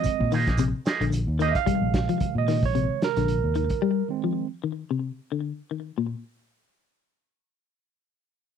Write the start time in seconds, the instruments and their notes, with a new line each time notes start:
Already playing: tine electric piano D#3 G#3 C4 D#5, clean electric guitar F3
0.04 muted fingered electric bass stroke, kick, closed hi-hat, shekere
0.20 fingered electric bass A#2, kick
0.32 clean electric guitar D#3 F3 A#3 D#4 G#4, open hi-hat, shekere
0.47 fingered electric bass A#1, clean electric guitar A#3 D#4 G#4, kick, snare, closed hi-hat
0.58 clean electric guitar C3, closed hi-hat, shekere
0.86 clean electric guitar F3 A#3 D#4 G#4, snare, closed hi-hat, shekere
1.01 fingered electric bass A#1, clean electric guitar D3, closed hi-hat
1.12 closed hi-hat, shekere
1.27 fingered electric bass D#2
1.39 clean electric guitar D#3 F3 A#3 D#4 G#4, tine electric piano D#5, closed hi-hat, shekere
1.51 tine electric piano E5, kick, closed hi-hat
1.56 tine electric piano F5
1.66 tine electric piano C3 D#3 G#3, clean electric guitar G3, kick, closed hi-hat
1.82 fingered electric bass A#1
1.94 kick, snare, closed hi-hat
2.09 clean electric guitar F3, closed hi-hat
2.20 muted fingered electric bass stroke, kick, closed hi-hat
2.35 fingered electric bass A#2, tine electric piano D#5
2.48 clean electric guitar D#3, snare, open hi-hat
2.63 fingered electric bass A#1, tine electric piano C#5, kick
2.75 clean electric guitar C3, closed hi-hat
3.02 tine electric piano A#4, snare, closed hi-hat
3.17 fingered electric bass A#1, clean electric guitar D3, snare, closed hi-hat
3.28 closed hi-hat
3.44 fingered electric bass D#2
3.55 clean electric guitar D#3, closed hi-hat
3.70 kick, closed hi-hat
3.82 clean electric guitar G3
4.09 tine electric piano D#3 G#3 C4
4.24 clean electric guitar F3
4.64 clean electric guitar D#3
4.91 clean electric guitar C3
5.32 clean electric guitar D3
5.71 clean electric guitar D#3
5.98 clean electric guitar A#2